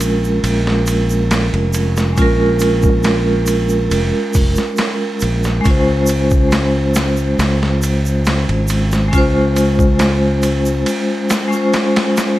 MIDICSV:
0, 0, Header, 1, 4, 480
1, 0, Start_track
1, 0, Tempo, 869565
1, 1200, Time_signature, 4, 2, 24, 8
1, 6840, End_track
2, 0, Start_track
2, 0, Title_t, "Vibraphone"
2, 0, Program_c, 0, 11
2, 0, Note_on_c, 0, 56, 90
2, 0, Note_on_c, 0, 61, 80
2, 0, Note_on_c, 0, 65, 84
2, 0, Note_on_c, 0, 70, 96
2, 1160, Note_off_c, 0, 56, 0
2, 1169, Note_off_c, 0, 61, 0
2, 1172, Note_on_c, 0, 56, 83
2, 1176, Note_off_c, 0, 65, 0
2, 1184, Note_off_c, 0, 70, 0
2, 1188, Note_on_c, 0, 61, 81
2, 1206, Note_on_c, 0, 65, 81
2, 1224, Note_on_c, 0, 70, 102
2, 3078, Note_off_c, 0, 56, 0
2, 3087, Note_off_c, 0, 61, 0
2, 3095, Note_off_c, 0, 65, 0
2, 3096, Note_on_c, 0, 56, 91
2, 3104, Note_off_c, 0, 70, 0
2, 3114, Note_on_c, 0, 61, 82
2, 3131, Note_on_c, 0, 65, 83
2, 3148, Note_on_c, 0, 72, 102
2, 5001, Note_off_c, 0, 56, 0
2, 5009, Note_off_c, 0, 61, 0
2, 5013, Note_on_c, 0, 56, 92
2, 5018, Note_off_c, 0, 65, 0
2, 5026, Note_off_c, 0, 72, 0
2, 5030, Note_on_c, 0, 61, 83
2, 5048, Note_on_c, 0, 65, 86
2, 5066, Note_on_c, 0, 72, 98
2, 6327, Note_off_c, 0, 56, 0
2, 6335, Note_off_c, 0, 61, 0
2, 6335, Note_on_c, 0, 56, 68
2, 6344, Note_off_c, 0, 65, 0
2, 6351, Note_on_c, 0, 61, 65
2, 6353, Note_off_c, 0, 72, 0
2, 6369, Note_on_c, 0, 65, 68
2, 6385, Note_on_c, 0, 72, 80
2, 6840, Note_off_c, 0, 56, 0
2, 6840, Note_off_c, 0, 61, 0
2, 6840, Note_off_c, 0, 65, 0
2, 6840, Note_off_c, 0, 72, 0
2, 6840, End_track
3, 0, Start_track
3, 0, Title_t, "Fingered electric bass"
3, 0, Program_c, 1, 33
3, 0, Note_on_c, 1, 34, 83
3, 221, Note_off_c, 1, 34, 0
3, 239, Note_on_c, 1, 34, 85
3, 821, Note_off_c, 1, 34, 0
3, 847, Note_on_c, 1, 29, 92
3, 1179, Note_off_c, 1, 29, 0
3, 1202, Note_on_c, 1, 34, 95
3, 2139, Note_off_c, 1, 34, 0
3, 2158, Note_on_c, 1, 29, 90
3, 2269, Note_off_c, 1, 29, 0
3, 2403, Note_on_c, 1, 29, 98
3, 2511, Note_off_c, 1, 29, 0
3, 2883, Note_on_c, 1, 34, 79
3, 3094, Note_off_c, 1, 34, 0
3, 3121, Note_on_c, 1, 37, 90
3, 4059, Note_off_c, 1, 37, 0
3, 4078, Note_on_c, 1, 37, 87
3, 4660, Note_off_c, 1, 37, 0
3, 4686, Note_on_c, 1, 32, 99
3, 5018, Note_off_c, 1, 32, 0
3, 5041, Note_on_c, 1, 37, 90
3, 5979, Note_off_c, 1, 37, 0
3, 6840, End_track
4, 0, Start_track
4, 0, Title_t, "Drums"
4, 3, Note_on_c, 9, 51, 64
4, 3, Note_on_c, 9, 82, 84
4, 58, Note_off_c, 9, 51, 0
4, 58, Note_off_c, 9, 82, 0
4, 134, Note_on_c, 9, 82, 45
4, 189, Note_off_c, 9, 82, 0
4, 242, Note_on_c, 9, 51, 88
4, 246, Note_on_c, 9, 82, 34
4, 297, Note_off_c, 9, 51, 0
4, 301, Note_off_c, 9, 82, 0
4, 371, Note_on_c, 9, 38, 56
4, 426, Note_off_c, 9, 38, 0
4, 477, Note_on_c, 9, 82, 82
4, 483, Note_on_c, 9, 51, 66
4, 533, Note_off_c, 9, 82, 0
4, 539, Note_off_c, 9, 51, 0
4, 606, Note_on_c, 9, 82, 48
4, 661, Note_off_c, 9, 82, 0
4, 722, Note_on_c, 9, 51, 86
4, 725, Note_on_c, 9, 38, 109
4, 726, Note_on_c, 9, 82, 32
4, 777, Note_off_c, 9, 51, 0
4, 780, Note_off_c, 9, 38, 0
4, 782, Note_off_c, 9, 82, 0
4, 849, Note_on_c, 9, 51, 40
4, 904, Note_off_c, 9, 51, 0
4, 956, Note_on_c, 9, 82, 83
4, 963, Note_on_c, 9, 51, 63
4, 1012, Note_off_c, 9, 82, 0
4, 1018, Note_off_c, 9, 51, 0
4, 1086, Note_on_c, 9, 82, 51
4, 1091, Note_on_c, 9, 38, 52
4, 1141, Note_off_c, 9, 82, 0
4, 1146, Note_off_c, 9, 38, 0
4, 1197, Note_on_c, 9, 82, 32
4, 1201, Note_on_c, 9, 36, 102
4, 1201, Note_on_c, 9, 51, 80
4, 1252, Note_off_c, 9, 82, 0
4, 1256, Note_off_c, 9, 36, 0
4, 1256, Note_off_c, 9, 51, 0
4, 1432, Note_on_c, 9, 82, 79
4, 1444, Note_on_c, 9, 51, 66
4, 1487, Note_off_c, 9, 82, 0
4, 1499, Note_off_c, 9, 51, 0
4, 1558, Note_on_c, 9, 82, 43
4, 1565, Note_on_c, 9, 36, 94
4, 1613, Note_off_c, 9, 82, 0
4, 1620, Note_off_c, 9, 36, 0
4, 1672, Note_on_c, 9, 82, 33
4, 1680, Note_on_c, 9, 51, 83
4, 1683, Note_on_c, 9, 38, 105
4, 1727, Note_off_c, 9, 82, 0
4, 1735, Note_off_c, 9, 51, 0
4, 1738, Note_off_c, 9, 38, 0
4, 1913, Note_on_c, 9, 82, 88
4, 1919, Note_on_c, 9, 51, 65
4, 1968, Note_off_c, 9, 82, 0
4, 1974, Note_off_c, 9, 51, 0
4, 2037, Note_on_c, 9, 82, 50
4, 2093, Note_off_c, 9, 82, 0
4, 2158, Note_on_c, 9, 82, 41
4, 2160, Note_on_c, 9, 51, 88
4, 2213, Note_off_c, 9, 82, 0
4, 2216, Note_off_c, 9, 51, 0
4, 2393, Note_on_c, 9, 82, 83
4, 2401, Note_on_c, 9, 36, 93
4, 2402, Note_on_c, 9, 46, 81
4, 2448, Note_off_c, 9, 82, 0
4, 2456, Note_off_c, 9, 36, 0
4, 2458, Note_off_c, 9, 46, 0
4, 2516, Note_on_c, 9, 82, 46
4, 2529, Note_on_c, 9, 38, 45
4, 2571, Note_off_c, 9, 82, 0
4, 2584, Note_off_c, 9, 38, 0
4, 2630, Note_on_c, 9, 82, 35
4, 2640, Note_on_c, 9, 51, 84
4, 2643, Note_on_c, 9, 38, 114
4, 2686, Note_off_c, 9, 82, 0
4, 2695, Note_off_c, 9, 51, 0
4, 2698, Note_off_c, 9, 38, 0
4, 2871, Note_on_c, 9, 82, 80
4, 2882, Note_on_c, 9, 51, 65
4, 2926, Note_off_c, 9, 82, 0
4, 2937, Note_off_c, 9, 51, 0
4, 2999, Note_on_c, 9, 82, 50
4, 3009, Note_on_c, 9, 38, 47
4, 3055, Note_off_c, 9, 82, 0
4, 3064, Note_off_c, 9, 38, 0
4, 3117, Note_on_c, 9, 82, 35
4, 3121, Note_on_c, 9, 36, 108
4, 3122, Note_on_c, 9, 51, 87
4, 3172, Note_off_c, 9, 82, 0
4, 3176, Note_off_c, 9, 36, 0
4, 3177, Note_off_c, 9, 51, 0
4, 3348, Note_on_c, 9, 82, 97
4, 3363, Note_on_c, 9, 51, 71
4, 3404, Note_off_c, 9, 82, 0
4, 3418, Note_off_c, 9, 51, 0
4, 3479, Note_on_c, 9, 82, 50
4, 3486, Note_on_c, 9, 36, 91
4, 3534, Note_off_c, 9, 82, 0
4, 3541, Note_off_c, 9, 36, 0
4, 3596, Note_on_c, 9, 82, 34
4, 3600, Note_on_c, 9, 51, 79
4, 3603, Note_on_c, 9, 38, 109
4, 3651, Note_off_c, 9, 82, 0
4, 3655, Note_off_c, 9, 51, 0
4, 3658, Note_off_c, 9, 38, 0
4, 3834, Note_on_c, 9, 82, 91
4, 3841, Note_on_c, 9, 51, 73
4, 3844, Note_on_c, 9, 38, 101
4, 3889, Note_off_c, 9, 82, 0
4, 3896, Note_off_c, 9, 51, 0
4, 3899, Note_off_c, 9, 38, 0
4, 3956, Note_on_c, 9, 82, 49
4, 4012, Note_off_c, 9, 82, 0
4, 4081, Note_on_c, 9, 51, 78
4, 4081, Note_on_c, 9, 82, 38
4, 4084, Note_on_c, 9, 38, 99
4, 4136, Note_off_c, 9, 82, 0
4, 4137, Note_off_c, 9, 51, 0
4, 4139, Note_off_c, 9, 38, 0
4, 4211, Note_on_c, 9, 38, 52
4, 4266, Note_off_c, 9, 38, 0
4, 4318, Note_on_c, 9, 82, 89
4, 4324, Note_on_c, 9, 51, 66
4, 4373, Note_off_c, 9, 82, 0
4, 4379, Note_off_c, 9, 51, 0
4, 4447, Note_on_c, 9, 82, 49
4, 4502, Note_off_c, 9, 82, 0
4, 4555, Note_on_c, 9, 82, 36
4, 4563, Note_on_c, 9, 51, 84
4, 4566, Note_on_c, 9, 38, 104
4, 4610, Note_off_c, 9, 82, 0
4, 4618, Note_off_c, 9, 51, 0
4, 4621, Note_off_c, 9, 38, 0
4, 4687, Note_on_c, 9, 51, 43
4, 4743, Note_off_c, 9, 51, 0
4, 4791, Note_on_c, 9, 82, 87
4, 4802, Note_on_c, 9, 51, 70
4, 4846, Note_off_c, 9, 82, 0
4, 4857, Note_off_c, 9, 51, 0
4, 4922, Note_on_c, 9, 82, 47
4, 4929, Note_on_c, 9, 38, 51
4, 4977, Note_off_c, 9, 82, 0
4, 4984, Note_off_c, 9, 38, 0
4, 5039, Note_on_c, 9, 51, 78
4, 5040, Note_on_c, 9, 36, 95
4, 5043, Note_on_c, 9, 82, 34
4, 5094, Note_off_c, 9, 51, 0
4, 5095, Note_off_c, 9, 36, 0
4, 5098, Note_off_c, 9, 82, 0
4, 5279, Note_on_c, 9, 51, 65
4, 5281, Note_on_c, 9, 82, 84
4, 5335, Note_off_c, 9, 51, 0
4, 5336, Note_off_c, 9, 82, 0
4, 5404, Note_on_c, 9, 36, 94
4, 5407, Note_on_c, 9, 82, 42
4, 5459, Note_off_c, 9, 36, 0
4, 5462, Note_off_c, 9, 82, 0
4, 5516, Note_on_c, 9, 51, 82
4, 5519, Note_on_c, 9, 38, 112
4, 5519, Note_on_c, 9, 82, 38
4, 5571, Note_off_c, 9, 51, 0
4, 5574, Note_off_c, 9, 38, 0
4, 5574, Note_off_c, 9, 82, 0
4, 5755, Note_on_c, 9, 82, 77
4, 5758, Note_on_c, 9, 51, 65
4, 5810, Note_off_c, 9, 82, 0
4, 5813, Note_off_c, 9, 51, 0
4, 5881, Note_on_c, 9, 82, 50
4, 5936, Note_off_c, 9, 82, 0
4, 5996, Note_on_c, 9, 51, 89
4, 6003, Note_on_c, 9, 82, 36
4, 6051, Note_off_c, 9, 51, 0
4, 6059, Note_off_c, 9, 82, 0
4, 6237, Note_on_c, 9, 82, 80
4, 6238, Note_on_c, 9, 51, 77
4, 6241, Note_on_c, 9, 38, 104
4, 6292, Note_off_c, 9, 82, 0
4, 6293, Note_off_c, 9, 51, 0
4, 6296, Note_off_c, 9, 38, 0
4, 6361, Note_on_c, 9, 82, 48
4, 6416, Note_off_c, 9, 82, 0
4, 6476, Note_on_c, 9, 82, 33
4, 6478, Note_on_c, 9, 51, 74
4, 6480, Note_on_c, 9, 38, 102
4, 6531, Note_off_c, 9, 82, 0
4, 6533, Note_off_c, 9, 51, 0
4, 6536, Note_off_c, 9, 38, 0
4, 6604, Note_on_c, 9, 51, 78
4, 6607, Note_on_c, 9, 38, 94
4, 6659, Note_off_c, 9, 51, 0
4, 6662, Note_off_c, 9, 38, 0
4, 6719, Note_on_c, 9, 82, 86
4, 6720, Note_on_c, 9, 51, 75
4, 6723, Note_on_c, 9, 38, 101
4, 6774, Note_off_c, 9, 82, 0
4, 6775, Note_off_c, 9, 51, 0
4, 6778, Note_off_c, 9, 38, 0
4, 6840, End_track
0, 0, End_of_file